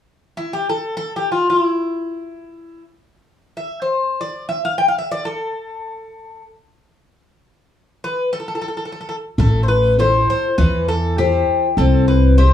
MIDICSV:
0, 0, Header, 1, 4, 480
1, 0, Start_track
1, 0, Key_signature, 0, "minor"
1, 0, Tempo, 500000
1, 12033, End_track
2, 0, Start_track
2, 0, Title_t, "Bouzouki"
2, 0, Program_c, 0, 25
2, 357, Note_on_c, 0, 64, 70
2, 511, Note_on_c, 0, 67, 70
2, 512, Note_off_c, 0, 64, 0
2, 663, Note_off_c, 0, 67, 0
2, 667, Note_on_c, 0, 69, 74
2, 918, Note_off_c, 0, 69, 0
2, 930, Note_on_c, 0, 69, 79
2, 1081, Note_off_c, 0, 69, 0
2, 1115, Note_on_c, 0, 67, 63
2, 1260, Note_off_c, 0, 67, 0
2, 1264, Note_on_c, 0, 65, 66
2, 1434, Note_off_c, 0, 65, 0
2, 1437, Note_on_c, 0, 64, 63
2, 2702, Note_off_c, 0, 64, 0
2, 3426, Note_on_c, 0, 76, 60
2, 3665, Note_on_c, 0, 72, 62
2, 3671, Note_off_c, 0, 76, 0
2, 4039, Note_on_c, 0, 74, 73
2, 4049, Note_off_c, 0, 72, 0
2, 4302, Note_off_c, 0, 74, 0
2, 4308, Note_on_c, 0, 76, 73
2, 4459, Note_off_c, 0, 76, 0
2, 4463, Note_on_c, 0, 77, 78
2, 4585, Note_off_c, 0, 77, 0
2, 4589, Note_on_c, 0, 79, 80
2, 4684, Note_off_c, 0, 79, 0
2, 4688, Note_on_c, 0, 77, 70
2, 4781, Note_off_c, 0, 77, 0
2, 4785, Note_on_c, 0, 76, 73
2, 4907, Note_off_c, 0, 76, 0
2, 4910, Note_on_c, 0, 74, 80
2, 5042, Note_on_c, 0, 69, 65
2, 5050, Note_off_c, 0, 74, 0
2, 6180, Note_off_c, 0, 69, 0
2, 7719, Note_on_c, 0, 71, 78
2, 7962, Note_off_c, 0, 71, 0
2, 7994, Note_on_c, 0, 69, 77
2, 8049, Note_off_c, 0, 69, 0
2, 8061, Note_on_c, 0, 69, 47
2, 8126, Note_off_c, 0, 69, 0
2, 8141, Note_on_c, 0, 69, 49
2, 8196, Note_off_c, 0, 69, 0
2, 8208, Note_on_c, 0, 69, 49
2, 8259, Note_off_c, 0, 69, 0
2, 8271, Note_on_c, 0, 69, 55
2, 8322, Note_off_c, 0, 69, 0
2, 8334, Note_on_c, 0, 69, 43
2, 8407, Note_off_c, 0, 69, 0
2, 8419, Note_on_c, 0, 69, 49
2, 8487, Note_off_c, 0, 69, 0
2, 8499, Note_on_c, 0, 69, 46
2, 8555, Note_off_c, 0, 69, 0
2, 8566, Note_on_c, 0, 69, 53
2, 8633, Note_off_c, 0, 69, 0
2, 8646, Note_on_c, 0, 69, 47
2, 8710, Note_off_c, 0, 69, 0
2, 8724, Note_on_c, 0, 69, 56
2, 8785, Note_off_c, 0, 69, 0
2, 9021, Note_on_c, 0, 69, 78
2, 9236, Note_off_c, 0, 69, 0
2, 9246, Note_on_c, 0, 72, 51
2, 9291, Note_off_c, 0, 72, 0
2, 9295, Note_on_c, 0, 71, 69
2, 9559, Note_off_c, 0, 71, 0
2, 9596, Note_on_c, 0, 72, 78
2, 9875, Note_off_c, 0, 72, 0
2, 9887, Note_on_c, 0, 72, 74
2, 10151, Note_off_c, 0, 72, 0
2, 10155, Note_on_c, 0, 71, 81
2, 10420, Note_off_c, 0, 71, 0
2, 10449, Note_on_c, 0, 69, 73
2, 10711, Note_off_c, 0, 69, 0
2, 10736, Note_on_c, 0, 67, 72
2, 11307, Note_on_c, 0, 69, 79
2, 11323, Note_off_c, 0, 67, 0
2, 11572, Note_off_c, 0, 69, 0
2, 11595, Note_on_c, 0, 71, 66
2, 11880, Note_off_c, 0, 71, 0
2, 11884, Note_on_c, 0, 72, 82
2, 12033, Note_off_c, 0, 72, 0
2, 12033, End_track
3, 0, Start_track
3, 0, Title_t, "Steel-string acoustic guitar"
3, 0, Program_c, 1, 25
3, 9008, Note_on_c, 1, 57, 58
3, 9562, Note_off_c, 1, 57, 0
3, 9587, Note_on_c, 1, 64, 42
3, 9591, Note_on_c, 1, 69, 46
3, 9599, Note_on_c, 1, 72, 46
3, 10042, Note_off_c, 1, 64, 0
3, 10045, Note_off_c, 1, 69, 0
3, 10046, Note_off_c, 1, 72, 0
3, 10161, Note_on_c, 1, 52, 61
3, 10714, Note_off_c, 1, 52, 0
3, 10733, Note_on_c, 1, 64, 47
3, 10741, Note_on_c, 1, 69, 38
3, 10742, Note_on_c, 1, 72, 55
3, 11192, Note_off_c, 1, 64, 0
3, 11192, Note_off_c, 1, 69, 0
3, 11195, Note_off_c, 1, 72, 0
3, 11318, Note_on_c, 1, 60, 57
3, 11868, Note_off_c, 1, 60, 0
3, 11884, Note_on_c, 1, 67, 45
3, 11888, Note_on_c, 1, 72, 41
3, 11894, Note_on_c, 1, 76, 48
3, 12033, Note_off_c, 1, 67, 0
3, 12033, Note_off_c, 1, 72, 0
3, 12033, Note_off_c, 1, 76, 0
3, 12033, End_track
4, 0, Start_track
4, 0, Title_t, "Upright bass"
4, 0, Program_c, 2, 32
4, 9006, Note_on_c, 2, 33, 84
4, 9809, Note_off_c, 2, 33, 0
4, 10158, Note_on_c, 2, 40, 76
4, 10961, Note_off_c, 2, 40, 0
4, 11299, Note_on_c, 2, 36, 87
4, 12033, Note_off_c, 2, 36, 0
4, 12033, End_track
0, 0, End_of_file